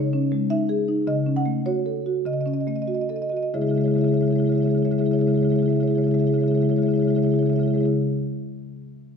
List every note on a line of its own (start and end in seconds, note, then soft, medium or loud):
0.00 1.04 C#3 soft
0.00 0.48 C#5 medium
0.13 0.43 C#4 soft
0.32 0.62 G#3 soft
0.50 0.80 D#4 soft
0.50 1.05 E5 medium
0.69 0.99 G#4 soft
0.88 1.07 D#4 soft
1.07 2.21 C#3 medium
1.07 1.35 D#5 medium
1.26 1.57 C#4 soft
1.36 1.64 F#5 medium
1.46 1.77 A3 soft
1.66 1.97 F#4 soft
1.66 2.23 C#5 medium
1.86 2.17 A4 soft
2.06 2.38 F#4 soft
2.26 3.52 C#3 soft
2.26 2.33 D#5 medium
2.33 2.41 D#5 soft
2.41 2.47 D#5 soft
2.46 2.79 C#4 soft
2.46 2.54 D#5 soft
2.54 2.61 D#5 soft
2.61 2.68 D#5 soft
2.67 3.01 A3 soft
2.67 2.76 D#5 soft
2.76 2.82 D#5 soft
2.82 2.88 D#5 soft
2.87 3.23 F#4 soft
2.87 2.94 D#5 soft
2.94 3.01 D#5 soft
3.01 3.09 D#5 soft
3.09 3.46 A4 soft
3.09 3.16 D#5 soft
3.16 3.22 D#5 soft
3.22 3.29 D#5 soft
3.29 3.55 F#4 soft
3.29 3.37 D#5 soft
3.37 3.43 D#5 soft
3.43 3.52 D#5 soft
3.54 3.62 C#3 soft
3.54 3.62 G#3 soft
3.54 3.62 E4 soft
3.54 3.62 G#4 soft
3.54 3.62 C#5 soft
3.54 3.61 E5 soft
3.61 3.71 C#3 soft
3.61 3.70 G#3 soft
3.61 3.69 E4 soft
3.61 3.70 G#4 soft
3.61 3.69 C#5 soft
3.61 3.67 E5 soft
3.67 3.80 C#3 soft
3.67 3.78 G#3 soft
3.67 3.76 E4 soft
3.67 3.78 G#4 soft
3.67 3.77 C#5 soft
3.67 3.75 E5 soft
3.75 3.86 G#3 soft
3.75 3.84 E4 soft
3.75 3.85 G#4 soft
3.75 3.84 C#5 soft
3.75 3.81 E5 soft
3.80 3.88 C#3 soft
3.80 3.91 C#5 soft
3.80 3.88 E5 soft
3.84 3.96 C#3 soft
3.84 3.96 G#3 soft
3.84 3.92 E4 soft
3.84 3.94 G#4 soft
3.84 3.94 E5 soft
3.91 3.99 E4 soft
3.91 4.01 G#4 soft
3.91 3.98 C#5 soft
3.91 4.01 E5 soft
3.96 4.05 C#3 soft
3.96 4.04 G#3 soft
3.96 4.06 E4 soft
3.96 4.05 C#5 soft
4.01 4.14 C#3 soft
4.01 4.12 G#3 soft
4.01 4.09 G#4 soft
4.01 4.13 C#5 soft
4.01 4.08 E5 soft
4.06 4.14 E4 soft
4.06 4.17 G#4 soft
4.06 4.14 E5 soft
4.12 4.23 C#3 soft
4.12 4.21 G#3 soft
4.12 4.22 E4 soft
4.12 4.21 C#5 soft
4.12 4.21 E5 soft
4.17 4.28 G#3 soft
4.17 4.25 G#4 soft
4.17 4.28 C#5 soft
4.17 4.26 E5 soft
4.22 4.31 C#3 soft
4.22 4.31 E4 soft
4.22 4.33 G#4 soft
4.22 4.32 E5 soft
4.28 4.40 C#3 soft
4.28 4.36 G#3 soft
4.28 4.39 E4 soft
4.28 4.36 C#5 soft
4.32 4.44 G#3 soft
4.32 4.40 G#4 soft
4.32 4.42 C#5 soft
4.32 4.38 E5 soft
4.38 4.49 C#3 soft
4.38 4.46 E4 soft
4.38 4.47 G#4 soft
4.38 4.45 E5 soft
4.42 4.52 G#3 soft
4.42 4.53 E4 soft
4.42 4.49 C#5 soft
4.42 4.52 E5 soft
4.47 4.58 C#3 soft
4.47 4.55 G#4 soft
4.47 4.56 C#5 soft
4.52 4.60 G#3 soft
4.52 4.61 E4 soft
4.52 4.62 G#4 soft
4.52 4.63 C#5 soft
4.52 4.58 E5 soft
4.58 4.66 C#3 soft
4.58 4.68 G#3 soft
4.58 4.68 E4 soft
4.58 4.64 E5 soft
4.62 4.75 C#3 soft
4.62 4.70 G#4 soft
4.62 4.71 C#5 soft
4.62 4.71 E5 soft
4.68 4.76 G#3 soft
4.68 4.75 E4 soft
4.68 4.78 G#4 soft
4.68 4.78 C#5 soft
4.68 4.78 E5 soft
4.75 4.82 C#3 soft
4.75 4.85 G#3 soft
4.75 4.83 E4 soft
4.75 4.85 G#4 soft
4.75 4.85 C#5 soft
4.75 4.85 E5 soft
4.82 4.91 C#3 soft
4.82 4.93 G#3 soft
4.82 4.90 E4 soft
4.82 4.92 G#4 soft
4.82 4.92 C#5 soft
4.82 4.92 E5 soft
4.90 5.01 C#3 soft
4.90 5.02 G#3 soft
4.90 4.99 E4 soft
4.90 4.99 G#4 soft
4.90 4.99 C#5 soft
4.90 4.98 E5 soft
4.98 5.11 C#3 soft
4.98 5.11 G#3 soft
4.98 5.06 E4 soft
4.98 5.07 G#4 soft
4.98 5.06 C#5 soft
4.98 5.05 E5 soft
5.05 5.14 E4 soft
5.05 5.15 G#4 soft
5.05 5.13 C#5 soft
5.05 5.12 E5 soft
5.11 5.20 C#3 soft
5.11 5.19 G#3 soft
5.11 5.21 E4 soft
5.11 5.21 G#4 soft
5.11 5.21 C#5 soft
5.11 5.18 E5 soft
5.18 5.28 C#3 soft
5.18 5.27 G#3 soft
5.18 5.29 E4 soft
5.18 5.29 G#4 soft
5.18 5.27 C#5 soft
5.18 5.25 E5 soft
5.25 5.36 C#3 soft
5.25 5.35 G#3 soft
5.25 5.34 C#5 soft
5.25 5.30 E5 soft
5.29 5.37 E4 soft
5.29 5.36 G#4 soft
5.29 5.37 E5 soft
5.34 5.45 C#3 soft
5.34 5.43 G#3 soft
5.34 5.45 E4 soft
5.34 5.43 G#4 soft
5.34 5.41 C#5 soft
5.34 5.44 E5 soft
5.41 5.54 C#3 soft
5.41 5.52 G#3 soft
5.41 5.52 E4 soft
5.41 5.51 G#4 soft
5.41 5.49 C#5 soft
5.41 5.50 E5 soft
5.49 5.60 G#3 soft
5.49 5.59 E4 soft
5.49 5.58 G#4 soft
5.49 5.56 C#5 soft
5.49 5.56 E5 soft
5.54 5.63 C#3 soft
5.54 5.62 C#5 soft
5.54 5.63 E5 soft
5.58 5.68 G#3 soft
5.58 5.66 E4 soft
5.58 5.66 G#4 soft
5.62 5.71 C#3 soft
5.62 5.73 E4 soft
5.62 5.72 G#4 soft
5.62 5.70 C#5 soft
5.62 5.69 E5 soft
5.68 5.80 C#3 soft
5.68 5.75 G#3 soft
5.68 5.77 C#5 soft
5.68 5.76 E5 soft
5.72 5.83 G#3 soft
5.72 5.80 E4 soft
5.72 5.81 G#4 soft
5.72 5.82 E5 soft
5.77 5.88 C#3 soft
5.77 5.88 E4 soft
5.77 5.83 C#5 soft
5.81 5.91 G#3 soft
5.81 5.88 G#4 soft
5.81 5.91 C#5 soft
5.81 5.88 E5 soft
5.88 5.98 C#3 soft
5.88 5.99 G#3 soft
5.88 5.95 E4 soft
5.88 5.95 G#4 soft
5.88 5.98 C#5 soft
5.88 5.95 E5 soft
5.95 6.07 C#3 soft
5.95 6.07 G#3 soft
5.95 6.04 E4 soft
5.95 6.03 G#4 soft
5.95 6.05 C#5 soft
5.95 6.02 E5 soft
6.02 6.11 E4 soft
6.02 6.12 G#4 soft
6.02 6.12 C#5 soft
6.02 6.08 E5 soft
6.07 6.15 C#3 soft
6.07 6.14 G#3 soft
6.07 6.14 E5 soft
6.11 6.24 C#3 soft
6.11 6.22 G#3 soft
6.11 6.19 E4 soft
6.11 6.19 G#4 soft
6.11 6.19 C#5 soft
6.11 6.20 E5 soft
6.19 6.30 G#3 soft
6.19 6.27 E4 soft
6.19 6.27 G#4 soft
6.19 6.26 C#5 soft
6.19 6.27 E5 soft
6.24 6.34 C#3 soft
6.24 6.35 E4 soft
6.24 6.34 G#4 soft
6.24 6.33 C#5 soft
6.24 6.34 E5 soft
6.30 6.43 C#3 soft
6.30 6.38 G#3 soft
6.30 6.40 C#5 soft
6.34 6.43 E4 soft
6.34 6.41 G#4 soft
6.34 6.41 E5 soft
6.38 6.46 G#3 soft
6.38 6.48 G#4 soft
6.38 6.48 C#5 soft
6.38 6.48 E5 soft
6.43 6.52 C#3 soft
6.43 6.55 G#3 soft
6.43 6.51 E4 soft
6.48 6.58 E4 soft
6.48 6.55 G#4 soft
6.48 6.55 C#5 soft
6.48 6.55 E5 soft
6.52 6.60 C#3 soft
6.52 6.63 G#3 soft
6.52 6.62 G#4 soft
6.52 6.62 C#5 soft
6.52 6.62 E5 soft
6.58 6.70 C#3 soft
6.58 6.65 E4 soft
6.62 6.70 G#3 soft
6.62 6.72 E4 soft
6.62 6.69 G#4 soft
6.62 6.70 C#5 soft
6.62 6.69 E5 soft
6.69 6.78 C#3 soft
6.69 6.78 G#3 soft
6.69 6.79 E4 soft
6.69 6.76 G#4 soft
6.69 6.76 C#5 soft
6.69 6.76 E5 soft
6.76 6.89 C#3 soft
6.76 6.86 G#3 soft
6.76 6.87 E4 soft
6.76 6.84 G#4 soft
6.76 6.83 C#5 soft
6.76 6.82 E5 soft
6.82 6.93 G#3 soft
6.82 6.92 G#4 soft
6.82 6.90 C#5 soft
6.82 6.89 E5 soft
6.87 6.99 C#3 soft
6.87 6.94 E4 soft
6.87 6.97 C#5 soft
6.87 6.96 E5 soft
6.92 7.03 G#3 soft
6.92 7.01 E4 soft
6.92 7.00 G#4 soft
6.92 7.02 E5 soft
6.97 7.07 C#3 soft
6.97 7.08 G#4 soft
6.97 7.04 C#5 soft
7.01 7.10 G#3 soft
7.01 7.08 E4 soft
7.01 7.10 C#5 soft
7.01 7.09 E5 soft
7.07 7.17 C#3 soft
7.07 7.18 G#3 soft
7.07 7.16 E4 soft
7.07 7.15 G#4 soft
7.07 7.17 C#5 soft
7.07 7.16 E5 soft
7.15 7.25 C#3 soft
7.15 7.27 G#3 soft
7.15 7.24 E4 soft
7.15 7.23 G#4 soft
7.15 7.24 C#5 soft
7.15 7.23 E5 soft
7.23 7.34 C#3 soft
7.23 7.34 G#3 soft
7.23 7.32 E4 soft
7.23 7.30 G#4 soft
7.23 7.31 C#5 soft
7.23 7.29 E5 soft
7.29 7.39 E4 soft
7.29 7.38 G#4 soft
7.29 7.39 C#5 soft
7.29 7.36 E5 soft
7.34 7.43 C#3 soft
7.34 7.41 G#3 soft
7.34 7.42 E5 soft
7.38 7.49 G#3 soft
7.38 7.48 E4 soft
7.38 7.46 G#4 soft
7.38 7.46 C#5 soft
7.38 7.49 E5 soft
7.43 7.50 C#3 soft
7.43 7.53 G#4 soft
7.43 7.53 C#5 soft
7.48 7.59 C#3 soft
7.48 7.58 G#3 soft
7.48 7.56 E4 soft
7.48 7.56 E5 soft
7.53 7.63 E4 soft
7.53 7.61 G#4 soft
7.53 7.60 C#5 soft
7.53 7.63 E5 soft
7.58 7.67 C#3 soft
7.58 7.66 G#3 soft
7.58 7.68 G#4 soft
7.58 7.66 C#5 soft
7.63 7.74 G#3 soft
7.63 7.70 E4 soft
7.63 7.73 C#5 soft
7.63 7.68 E5 soft
7.67 7.76 C#3 soft
7.67 7.78 E4 soft
7.67 7.75 G#4 soft
7.67 7.75 E5 soft
7.73 7.86 C#3 soft
7.73 7.81 G#3 soft
7.73 7.83 G#4 soft
7.73 7.80 C#5 soft
7.73 7.82 E5 soft
7.78 7.91 G#3 soft
7.78 7.85 E4 soft
7.78 7.87 C#5 soft
7.78 7.91 E5 soft
7.83 7.91 C#3 soft
7.83 7.91 E4 soft
7.83 7.91 G#4 soft
7.83 7.91 C#5 soft